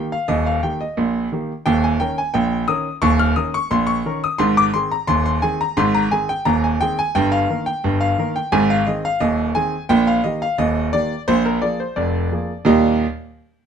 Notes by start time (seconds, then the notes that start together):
Already playing: D#3 A#3 G4
0.12 F5
0.28 D#1 D#2 D#5
0.46 F5
0.63 D#3 A#3 G4 G5
0.81 D#5
0.97 A#1 A#2
1.32 D#3 A#3 G4
1.66 D#1 D#2 G5
1.84 G#5
2.00 D#3 C#4 A#4 G5
2.18 G#5
2.34 A#1 A#2 G5
2.68 D#3 C#4 A#4 D#6
3.02 D#1 D#2 C#6
3.19 F6
3.36 D#3 C#4 A#4 D#6
3.54 C#6
3.71 A#1 A#2 C6
3.87 C#6
4.06 D#3 C#4 A#4
4.24 D#6
4.38 G#1 G#2 C6
4.57 D6
4.74 D#3 C4 G#4 C6
4.92 A#5
5.07 D#1 D#2 C6
5.26 C6
5.42 D#3 C4 G#4 G#5
5.61 A#5
5.77 G#1 G#2 C6
5.95 A#5
6.11 D#3 C4 G#4 G#5
6.29 G5
6.45 D#1 D#2 A#5
6.64 G#5
6.81 D#3 C4 G#4 G5
6.99 G#5
7.15 G1 G2 G5
7.32 F5
7.49 D#3 A#3 A#4
7.66 G5
7.84 G1 G2
8.01 F5
8.18 D#3 A#3 A#4
8.36 G5
8.52 G#1 G#2 G#5
8.70 F5
8.87 D#3 C4 G#4 D#5
9.05 F5
9.20 D#1 D#2 D#5
9.55 D#3 C4 G#4 G#5
9.89 A#1 A#2 G5
10.07 F5
10.24 D#3 A#3 G4 D#5
10.42 F5
10.58 D#1 D#2 D#5
10.93 D#3 A#3 G4 D5
11.28 A#1 A#2 C5
11.45 A#4
11.62 F3 A#3 G#4 D5
11.80 C5
11.96 F1 F2 D5
12.32 F3 A#3 G#4
12.65 D#2 A#2 G3 A#3 D#4 G4 D#5